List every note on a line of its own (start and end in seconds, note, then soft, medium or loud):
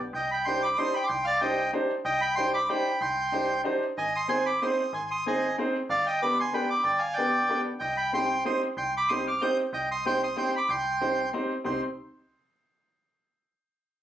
0.00 0.11 B1 medium
0.13 0.76 C2 loud
0.13 0.31 D#5 medium
0.13 0.31 G5 medium
0.31 0.46 G5 medium
0.31 0.46 B5 medium
0.45 0.63 D4 medium
0.45 0.63 D#4 medium
0.45 0.63 G4 medium
0.45 0.64 C5 medium
0.45 0.62 G5 medium
0.45 0.63 C6 loud
0.62 0.77 B5 medium
0.62 0.78 D6 loud
0.77 0.95 D4 medium
0.77 0.95 D#4 medium
0.77 0.95 G4 medium
0.77 0.95 C5 medium
0.77 0.94 C6 medium
0.77 0.95 D#6 loud
0.94 1.06 G5 medium
0.94 1.06 B5 medium
1.04 1.26 C6 medium
1.04 1.08 D6 medium
1.09 1.72 C2 loud
1.09 1.25 G5 medium
1.25 1.40 D5 medium
1.25 1.41 F5 loud
1.41 1.59 D4 medium
1.41 1.59 D#4 medium
1.41 1.59 G4 medium
1.41 1.59 C5 medium
1.41 1.71 D#5 medium
1.41 1.71 G5 medium
1.73 1.90 D4 medium
1.73 1.90 D#4 medium
1.73 1.90 G4 medium
1.73 1.90 C5 medium
2.05 2.67 C2 medium
2.05 2.21 D#5 medium
2.05 2.21 G5 loud
2.21 2.35 G5 medium
2.21 2.35 B5 loud
2.36 2.54 D4 medium
2.36 2.54 D#4 medium
2.36 2.55 G4 medium
2.36 2.55 C5 medium
2.36 2.52 G5 medium
2.36 2.52 C6 loud
2.54 2.67 B5 medium
2.54 2.69 D6 loud
2.69 2.86 D4 medium
2.69 2.86 D#4 medium
2.69 2.86 G4 medium
2.69 2.87 C5 medium
2.69 2.99 G5 medium
2.69 3.02 B5 loud
3.01 3.64 C2 medium
3.01 3.62 G5 medium
3.01 3.61 C6 medium
3.32 3.50 D4 medium
3.32 3.50 D#4 medium
3.32 3.50 G4 medium
3.32 3.51 C5 medium
3.64 3.82 D4 medium
3.64 3.82 D#4 medium
3.64 3.82 G4 medium
3.64 3.83 C5 medium
3.98 4.60 G#1 loud
3.98 4.14 D#5 medium
3.98 4.16 G#5 medium
4.15 4.27 C6 medium
4.15 4.30 D#6 loud
4.28 4.46 C4 medium
4.28 4.47 D#4 soft
4.28 4.47 G#4 medium
4.28 4.47 C5 medium
4.28 4.45 G#5 medium
4.28 4.47 C6 loud
4.46 4.60 B5 medium
4.46 4.62 D6 medium
4.62 4.79 C4 medium
4.62 4.80 D#4 medium
4.62 4.79 G#4 medium
4.62 4.80 C5 medium
4.62 4.92 C6 medium
4.62 4.95 D#6 medium
4.93 5.55 G#1 loud
4.93 5.10 G#5 medium
4.93 5.09 C6 medium
5.11 5.25 C6 medium
5.11 5.26 D#6 loud
5.26 5.43 C4 medium
5.26 5.43 D#4 medium
5.26 5.44 G#4 medium
5.26 5.44 C5 medium
5.26 5.56 D#5 medium
5.26 5.56 G#5 medium
5.58 5.75 C4 medium
5.58 5.75 D#4 medium
5.58 5.75 G#4 medium
5.58 5.75 C5 medium
5.89 6.52 G1 loud
5.89 6.06 D5 medium
5.89 6.07 F5 medium
6.06 6.21 D#5 medium
6.06 6.22 G5 medium
6.22 6.39 B3 medium
6.22 6.39 D4 medium
6.22 6.39 G4 medium
6.22 6.39 B4 medium
6.22 6.38 B5 medium
6.22 6.39 D6 medium
6.40 6.53 G#5 medium
6.40 6.54 C6 medium
6.52 6.70 B3 medium
6.52 6.70 D4 medium
6.52 6.70 G4 medium
6.52 6.71 B4 medium
6.52 6.69 G5 medium
6.52 6.69 B5 medium
6.70 6.84 B5 medium
6.70 6.85 D6 medium
6.83 7.47 G1 medium
6.83 7.00 D5 medium
6.83 7.02 G5 medium
6.98 7.14 F5 medium
6.98 7.16 G#5 medium
7.13 7.61 D5 medium
7.13 7.61 G5 medium
7.17 7.34 B3 medium
7.17 7.35 D4 medium
7.17 7.34 G4 medium
7.17 7.35 B4 medium
7.49 7.66 B3 medium
7.49 7.66 D4 medium
7.49 7.66 G4 medium
7.49 7.67 B4 medium
7.80 8.43 C2 medium
7.80 7.97 D#5 medium
7.80 7.96 G5 medium
7.97 8.12 G5 medium
7.97 8.13 B5 medium
8.13 8.30 C4 medium
8.13 8.30 D#4 medium
8.13 8.31 G4 medium
8.13 8.31 C5 medium
8.13 8.44 G5 medium
8.13 8.45 C6 loud
8.45 8.62 C4 medium
8.45 8.63 D#4 medium
8.45 8.63 G4 medium
8.45 8.62 C5 medium
8.45 8.62 C6 medium
8.45 8.62 D#6 medium
8.77 9.39 C2 medium
8.77 8.93 G5 medium
8.77 8.95 C6 medium
8.97 9.10 B5 medium
8.97 9.11 D6 medium
9.09 9.27 C4 medium
9.09 9.27 D#4 medium
9.09 9.27 G4 medium
9.09 9.27 C5 medium
9.09 9.25 C6 medium
9.09 9.27 D#6 loud
9.27 9.41 D6 medium
9.27 9.42 F6 medium
9.41 9.58 C4 medium
9.41 9.58 D#4 medium
9.41 9.59 G4 medium
9.41 9.59 C5 medium
9.41 9.57 D#6 medium
9.41 9.57 G6 loud
9.73 10.35 C2 loud
9.73 9.89 D#5 medium
9.73 9.89 G5 medium
9.91 10.04 C6 medium
9.91 10.06 D#6 loud
10.06 10.22 C4 medium
10.06 10.23 D#4 medium
10.06 10.22 G4 medium
10.06 10.23 C5 medium
10.06 10.22 G5 medium
10.06 10.22 C6 loud
10.23 10.36 C6 medium
10.23 10.38 D#6 loud
10.36 10.54 C4 medium
10.36 10.54 D#4 medium
10.36 10.54 G4 medium
10.36 10.54 C5 medium
10.36 10.53 G5 medium
10.36 10.55 C6 loud
10.56 10.69 B5 medium
10.56 10.71 D6 medium
10.69 11.32 C2 loud
10.69 11.29 G5 medium
10.69 11.30 C6 medium
11.01 11.18 C4 medium
11.01 11.18 D#4 medium
11.01 11.18 G4 medium
11.01 11.18 C5 medium
11.33 11.50 C4 medium
11.33 11.50 D#4 medium
11.33 11.50 G4 medium
11.33 11.51 C5 medium
11.64 11.81 C2 loud
11.64 11.81 C4 medium
11.64 11.81 D#4 medium
11.64 11.81 G4 medium
11.64 11.81 C5 medium
11.64 11.81 C6 medium